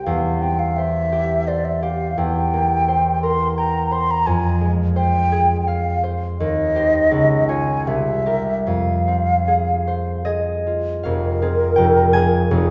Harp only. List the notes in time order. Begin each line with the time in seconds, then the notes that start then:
Already playing: C4 E4 G4 C5
0.06 E2
0.42 C4
0.78 C5
1.12 G4
1.48 C5
1.83 G4
2.18 E2
2.53 A#3
2.88 C5
3.23 A#4
3.58 G5
3.91 C5
4.27 F2
4.61 G#3
4.96 C5
5.32 G#4
5.68 F5
6.04 C5
6.40 D#2
6.76 G4 C5
7.11 C#2
7.49 F4 C#5
7.87 C2
8.26 G4 A#4
8.67 F2
9.08 C4
9.48 G#4
9.87 C5
10.25 G#4 D#5
10.67 F4
11.03 F1 F2 F5
11.42 C4 F4 G#4
11.76 F1 F2 G5
12.13 C4 F4 G#4 G#5
12.51 F1 F2